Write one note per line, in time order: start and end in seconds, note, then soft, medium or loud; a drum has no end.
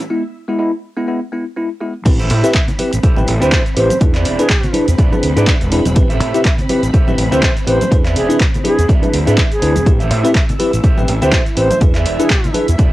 0.00 0.11 E4 medium
0.00 0.11 E5 medium
0.00 muted clean electric guitar stroke soft
0.00 shaker soft
0.10 0.21 G#3 medium
0.10 0.22 B3 medium
0.10 0.22 E4 medium
0.48 0.57 G#3 medium
0.48 0.57 B3 medium
0.48 0.57 E4 loud
0.58 0.70 G#3 medium
0.58 0.70 B3 medium
0.58 0.70 E4 medium
0.96 1.06 G#3 medium
0.96 1.06 B3 medium
0.96 1.06 E4 loud
1.07 1.19 G#3 medium
1.07 1.19 B3 medium
1.07 1.19 E4 medium
1.32 1.43 G#3 medium
1.32 1.44 B3 medium
1.32 1.44 E4 medium
1.56 1.68 G#3 medium
1.56 1.68 B3 medium
1.56 1.68 E4 medium
1.81 1.92 G#3 medium
1.81 1.92 B3 medium
1.81 1.92 E4 loud
2.05 2.31 A1 loud
2.05 2.17 C4 medium
2.05 9.87 C4 medium
2.05 2.17 E4 medium
2.05 2.17 G4 medium
2.05 2.17 B4 medium
2.05 9.87 B5 medium
2.05 muted clean electric guitar stroke loud
2.05 kick loud
2.05 closed hi-hat medium
2.05 crash loud
2.05 high conga medium
2.05 maracas medium
2.05 shaker medium
2.19 2.49 E4 medium
2.19 2.49 G4 medium
2.19 2.49 A4 medium
2.19 2.49 C5 medium
2.19 closed hi-hat soft
2.19 maracas soft
2.19 shaker soft
2.30 2.41 A2 medium
2.30 open hi-hat loud
2.30 maracas medium
2.43 2.52 C4 medium
2.43 2.52 E4 medium
2.43 2.53 G4 medium
2.43 2.53 B4 loud
2.43 2.51 E5 medium
2.43 closed hi-hat medium
2.43 maracas soft
2.43 shaker medium
2.54 2.63 E5 medium
2.54 kick loud
2.54 clap loud
2.54 closed hi-hat medium
2.54 maracas medium
2.54 shaker medium
2.68 closed hi-hat soft
2.68 low conga medium
2.68 maracas soft
2.68 shaker soft
2.79 2.90 C4 loud
2.79 2.90 E4 medium
2.79 2.90 G4 medium
2.79 2.90 B4 loud
2.79 muted clean electric guitar stroke soft
2.79 open hi-hat medium
2.79 high conga medium
2.79 maracas medium
2.93 3.02 A1 medium
2.93 closed hi-hat medium
2.93 maracas soft
2.93 shaker medium
3.03 3.17 E4 medium
3.03 3.17 G4 medium
3.03 3.17 A4 medium
3.03 3.17 C5 medium
3.03 muted fingered electric bass stroke soft
3.03 kick loud
3.03 closed hi-hat medium
3.03 maracas medium
3.03 shaker medium
3.16 3.26 A1 medium
3.16 3.31 C4 loud
3.16 3.32 E4 medium
3.16 3.32 G4 medium
3.16 3.32 B4 loud
3.16 high conga loud
3.16 shaker soft
3.27 3.39 A1 medium
3.27 muted clean electric guitar stroke soft
3.27 open hi-hat loud
3.27 maracas loud
3.41 3.50 D2 medium
3.41 3.56 C4 medium
3.41 3.56 E4 medium
3.41 3.59 E4 loud
3.41 3.56 G4 medium
3.41 3.59 G4 medium
3.41 3.59 A4 medium
3.41 3.56 B4 medium
3.41 3.59 B4 medium
3.41 3.62 C5 loud
3.41 closed hi-hat medium
3.41 maracas soft
3.41 shaker medium
3.52 kick loud
3.52 clap loud
3.52 closed hi-hat medium
3.52 shaker medium
3.66 closed hi-hat soft
3.66 shaker soft
3.76 3.88 A1 medium
3.76 3.87 C4 loud
3.76 3.88 E4 medium
3.76 3.88 G4 medium
3.76 3.88 B4 loud
3.76 3.98 C5 loud
3.76 muted clean electric guitar stroke soft
3.76 open hi-hat loud
3.76 maracas medium
3.90 closed hi-hat medium
3.90 high conga medium
3.90 maracas soft
3.90 shaker medium
4.00 4.25 E2 loud
4.00 4.12 D4 medium
4.00 4.12 E4 medium
4.00 4.12 G#4 medium
4.00 4.12 B4 medium
4.00 muted clean electric guitar stroke loud
4.00 kick loud
4.00 closed hi-hat medium
4.00 high conga loud
4.00 maracas medium
4.00 shaker medium
4.14 4.44 E4 medium
4.14 4.44 G#4 medium
4.14 4.44 B4 medium
4.14 4.44 D5 medium
4.14 clap soft
4.14 closed hi-hat soft
4.14 maracas soft
4.14 shaker soft
4.25 4.36 E1 medium
4.25 open hi-hat loud
4.25 maracas loud
4.39 4.48 D4 medium
4.39 4.48 E4 medium
4.39 4.74 G#4 loud
4.39 4.48 G#4 medium
4.39 4.48 B4 loud
4.39 closed hi-hat medium
4.39 maracas soft
4.39 shaker medium
4.50 kick loud
4.50 clap loud
4.50 closed hi-hat medium
4.50 shaker medium
4.63 closed hi-hat soft
4.63 low conga medium
4.63 maracas soft
4.63 shaker soft
4.73 4.85 D4 medium
4.73 4.85 E4 medium
4.73 4.85 G#4 medium
4.73 4.85 B4 loud
4.73 muted clean electric guitar stroke soft
4.73 open hi-hat loud
4.73 high conga medium
4.73 maracas medium
4.88 4.96 E2 loud
4.88 closed hi-hat medium
4.88 maracas soft
4.88 shaker medium
4.98 5.09 E1 medium
4.98 5.12 E4 medium
4.98 5.12 G#4 medium
4.98 5.12 B4 medium
4.98 5.12 D5 medium
4.98 kick loud
4.98 closed hi-hat medium
4.98 maracas medium
4.98 shaker medium
5.11 5.26 D4 loud
5.11 5.27 E4 medium
5.11 5.27 G#4 medium
5.11 5.27 B4 loud
5.11 high conga loud
5.11 shaker soft
5.23 5.34 D2 medium
5.23 muted clean electric guitar stroke soft
5.23 open hi-hat loud
5.23 maracas loud
5.36 5.45 G#2 loud
5.36 5.51 D4 medium
5.36 5.54 E4 medium
5.36 5.51 E4 medium
5.36 5.51 G#4 medium
5.36 5.54 G#4 medium
5.36 5.51 B4 medium
5.36 5.54 B4 medium
5.36 5.54 D5 medium
5.36 closed hi-hat medium
5.36 maracas soft
5.36 shaker medium
5.47 kick loud
5.47 clap loud
5.47 closed hi-hat medium
5.47 shaker medium
5.61 5.80 E1 loud
5.61 closed hi-hat soft
5.61 shaker soft
5.72 5.83 D4 loud
5.72 5.83 E4 medium
5.72 5.83 G#4 medium
5.72 5.83 B4 loud
5.72 muted clean electric guitar stroke soft
5.72 open hi-hat loud
5.72 maracas medium
5.85 5.94 E1 medium
5.85 closed hi-hat medium
5.85 high conga medium
5.85 maracas soft
5.85 shaker medium
5.96 6.20 A1 loud
5.96 6.07 C4 medium
5.96 6.07 E4 medium
5.96 6.07 G4 medium
5.96 6.07 B4 medium
5.96 muted clean electric guitar stroke loud
5.96 kick loud
5.96 closed hi-hat medium
5.96 high conga loud
5.96 shaker medium
5.96 maracas medium
6.10 6.40 G4 medium
6.10 6.40 A4 medium
6.10 6.40 C5 medium
6.10 6.40 E5 medium
6.10 closed hi-hat soft
6.10 maracas soft
6.10 shaker soft
6.20 6.31 A2 medium
6.20 open hi-hat loud
6.20 maracas medium
6.34 6.43 C4 loud
6.34 6.43 E4 medium
6.34 6.43 G4 medium
6.34 6.43 B4 loud
6.34 6.41 E5 medium
6.34 closed hi-hat medium
6.34 maracas soft
6.34 shaker medium
6.45 6.54 E5 medium
6.45 kick loud
6.45 clap loud
6.45 closed hi-hat medium
6.45 shaker medium
6.58 closed hi-hat soft
6.58 low conga loud
6.58 maracas soft
6.58 shaker soft
6.69 6.80 C4 loud
6.69 6.80 E4 medium
6.69 6.81 G4 medium
6.69 6.81 B4 loud
6.69 muted clean electric guitar stroke soft
6.69 open hi-hat medium
6.69 high conga medium
6.69 maracas medium
6.83 6.91 A1 medium
6.83 closed hi-hat medium
6.83 shaker medium
6.83 maracas soft
6.93 7.08 G4 medium
6.93 7.08 A4 medium
6.93 7.07 C5 medium
6.93 7.08 E5 medium
6.93 muted fingered electric bass stroke soft
6.93 kick loud
6.93 closed hi-hat medium
6.93 shaker medium
6.93 maracas soft
7.07 7.16 A1 loud
7.07 7.22 C4 loud
7.07 7.22 E4 medium
7.07 7.22 G4 medium
7.07 7.22 B4 loud
7.07 high conga loud
7.07 shaker soft
7.18 7.29 A1 medium
7.18 muted clean electric guitar stroke soft
7.18 open hi-hat loud
7.18 maracas loud
7.31 7.40 D2 medium
7.31 7.46 C4 medium
7.31 7.46 E4 medium
7.31 7.46 G4 medium
7.31 7.49 G4 medium
7.31 7.49 A4 medium
7.31 7.47 B4 medium
7.31 7.49 C5 medium
7.31 7.52 C5 loud
7.31 7.49 E5 medium
7.31 closed hi-hat medium
7.31 maracas soft
7.31 shaker medium
7.43 kick loud
7.43 clap loud
7.43 closed hi-hat medium
7.43 shaker medium
7.57 closed hi-hat soft
7.57 shaker soft
7.66 7.78 A1 medium
7.66 7.78 C4 loud
7.66 7.78 E4 medium
7.66 7.78 G4 medium
7.66 7.78 B4 loud
7.66 7.97 C5 loud
7.66 muted clean electric guitar stroke soft
7.66 open hi-hat loud
7.66 maracas medium
7.81 closed hi-hat soft
7.81 high conga medium
7.81 maracas soft
7.81 shaker medium
7.91 8.16 E2 loud
7.91 8.02 D4 medium
7.91 8.02 E4 medium
7.91 8.02 G#4 medium
7.91 8.02 B4 medium
7.91 muted clean electric guitar stroke loud
7.91 kick loud
7.91 closed hi-hat medium
7.91 high conga medium
7.91 maracas soft
7.91 shaker medium
8.05 8.35 G#4 medium
8.05 8.35 B4 medium
8.05 8.35 D5 medium
8.05 8.35 E5 loud
8.05 clap soft
8.05 closed hi-hat soft
8.05 maracas soft
8.05 shaker soft
8.16 8.27 E1 medium
8.16 8.37 G#4 medium
8.16 open hi-hat loud
8.16 maracas loud
8.29 8.38 D4 medium
8.29 8.38 E4 medium
8.29 8.38 G#4 medium
8.29 8.38 B4 loud
8.29 closed hi-hat soft
8.29 shaker medium
8.29 maracas soft
8.40 kick loud
8.40 clap loud
8.40 closed hi-hat medium
8.40 shaker medium
8.40 maracas soft
8.54 closed hi-hat soft
8.54 low conga medium
8.54 shaker soft
8.54 maracas soft
8.64 8.75 D4 medium
8.64 8.75 E4 medium
8.64 8.75 G#4 medium
8.64 8.86 G#4 medium
8.64 8.76 B4 loud
8.64 muted clean electric guitar stroke soft
8.64 open hi-hat medium
8.64 high conga medium
8.64 maracas medium
8.78 8.87 E2 medium
8.78 closed hi-hat medium
8.78 shaker medium
8.78 maracas soft
8.88 9.00 E1 medium
8.88 9.03 G#4 medium
8.88 9.03 B4 medium
8.88 9.03 D5 medium
8.88 9.03 E5 medium
8.88 kick loud
8.88 closed hi-hat medium
8.88 maracas soft
8.88 shaker medium
9.02 9.17 D4 loud
9.02 9.17 E4 medium
9.02 9.17 G#4 medium
9.02 9.17 B4 loud
9.02 closed hi-hat soft
9.02 high conga loud
9.02 shaker soft
9.13 9.24 D2 medium
9.13 muted clean electric guitar stroke soft
9.13 open hi-hat loud
9.13 maracas medium
9.26 9.36 G#2 loud
9.26 9.41 D4 medium
9.26 9.41 E4 medium
9.26 9.42 G#4 medium
9.26 9.44 G#4 medium
9.26 9.42 B4 medium
9.26 9.44 B4 medium
9.26 9.44 D5 medium
9.26 9.44 E5 medium
9.26 closed hi-hat soft
9.26 maracas soft
9.26 shaker medium
9.38 kick loud
9.38 clap loud
9.38 closed hi-hat medium
9.38 shaker medium
9.51 9.92 G#4 loud
9.51 closed hi-hat soft
9.51 shaker soft
9.62 9.77 D2 medium
9.62 9.73 D4 loud
9.62 9.73 E4 medium
9.62 9.73 G#4 medium
9.62 9.73 B4 loud
9.62 muted clean electric guitar stroke soft
9.62 open hi-hat loud
9.62 maracas medium
9.76 9.84 E1 medium
9.76 closed hi-hat soft
9.76 high conga medium
9.76 maracas soft
9.76 shaker medium
9.86 10.11 A1 loud
9.86 9.97 C4 medium
9.86 9.97 E4 medium
9.86 12.93 E4 medium
9.86 9.97 G4 medium
9.86 9.98 B4 medium
9.86 12.93 E5 medium
9.86 muted clean electric guitar stroke loud
9.86 kick loud
9.86 closed hi-hat medium
9.86 high conga loud
9.86 maracas medium
9.86 shaker medium
10.00 10.30 G4 medium
10.00 10.30 A4 medium
10.00 10.30 C5 medium
10.00 10.30 E5 medium
10.00 closed hi-hat soft
10.00 maracas soft
10.00 shaker soft
10.11 10.22 A2 medium
10.11 open hi-hat loud
10.11 maracas medium
10.24 10.33 C4 loud
10.24 10.33 E4 medium
10.24 10.33 G4 medium
10.24 10.33 B4 loud
10.24 10.31 E5 medium
10.24 closed hi-hat medium
10.24 maracas soft
10.24 shaker medium
10.35 10.44 E5 medium
10.35 kick loud
10.35 clap loud
10.35 closed hi-hat medium
10.35 shaker medium
10.49 closed hi-hat soft
10.49 low conga medium
10.49 maracas soft
10.49 shaker soft
10.59 10.70 C4 loud
10.59 10.70 E4 medium
10.59 10.71 G4 medium
10.59 10.71 B4 loud
10.59 muted clean electric guitar stroke soft
10.59 open hi-hat medium
10.59 high conga medium
10.59 maracas loud
10.74 10.82 A1 loud
10.74 closed hi-hat soft
10.74 maracas soft
10.74 shaker medium
10.84 10.98 G4 medium
10.84 10.98 A4 medium
10.84 10.98 C5 medium
10.84 10.98 E5 medium
10.84 muted fingered electric bass stroke soft
10.84 kick loud
10.84 closed hi-hat medium
10.84 maracas soft
10.84 shaker medium
10.97 11.06 A1 medium
10.97 11.12 C4 loud
10.97 11.12 E4 medium
10.97 11.12 G4 medium
10.97 11.12 B4 loud
10.97 high conga medium
10.97 shaker soft
11.08 11.19 A1 medium
11.08 muted clean electric guitar stroke soft
11.08 open hi-hat loud
11.08 maracas medium
11.22 11.31 D2 medium
11.22 11.36 C4 medium
11.22 11.37 E4 medium
11.22 11.37 G4 medium
11.22 11.40 G4 medium
11.22 11.40 A4 medium
11.22 11.37 B4 loud
11.22 11.42 C5 loud
11.22 11.40 C5 medium
11.22 11.40 E5 medium
11.22 closed hi-hat soft
11.22 maracas soft
11.22 shaker medium
11.33 kick loud
11.33 clap loud
11.33 closed hi-hat medium
11.33 shaker medium
11.47 closed hi-hat soft
11.47 shaker soft
11.57 11.68 A1 medium
11.57 11.68 C4 loud
11.57 11.68 E4 medium
11.57 11.68 G4 medium
11.57 11.68 B4 loud
11.57 11.78 C5 medium
11.57 muted clean electric guitar stroke soft
11.57 open hi-hat loud
11.57 maracas medium
11.71 closed hi-hat soft
11.71 high conga medium
11.71 maracas soft
11.71 shaker medium
11.81 12.06 E2 loud
11.81 11.92 D4 medium
11.81 11.92 E4 medium
11.81 11.92 G#4 medium
11.81 11.93 B4 medium
11.81 muted clean electric guitar stroke loud
11.81 kick loud
11.81 closed hi-hat medium
11.81 high conga loud
11.81 maracas medium
11.81 shaker medium
11.94 12.25 G#4 medium
11.94 12.25 B4 medium
11.94 12.25 D5 medium
11.94 12.25 E5 medium
11.94 clap soft
11.94 closed hi-hat soft
11.94 maracas soft
11.94 shaker soft
12.05 12.17 E1 medium
12.05 open hi-hat loud
12.05 maracas medium
12.19 12.28 D4 medium
12.19 12.28 E4 medium
12.19 12.55 G#4 medium
12.19 12.28 G#4 medium
12.19 12.28 B4 loud
12.19 closed hi-hat medium
12.19 maracas soft
12.19 shaker medium
12.30 kick loud
12.30 clap loud
12.30 closed hi-hat medium
12.30 maracas soft
12.30 shaker medium
12.44 closed hi-hat soft
12.44 low conga medium
12.44 maracas soft
12.44 shaker soft
12.54 12.65 D4 loud
12.54 12.65 E4 medium
12.54 12.66 G#4 medium
12.54 12.66 B4 loud
12.54 muted clean electric guitar stroke soft
12.54 open hi-hat medium
12.54 high conga medium
12.54 maracas loud
12.68 12.77 E2 medium
12.68 closed hi-hat medium
12.68 shaker medium
12.68 maracas soft
12.78 12.90 E1 medium
12.78 12.93 G#4 medium
12.78 12.93 B4 medium
12.78 12.93 D5 medium
12.78 12.93 E5 medium
12.78 kick loud
12.78 closed hi-hat medium
12.78 maracas medium
12.78 shaker medium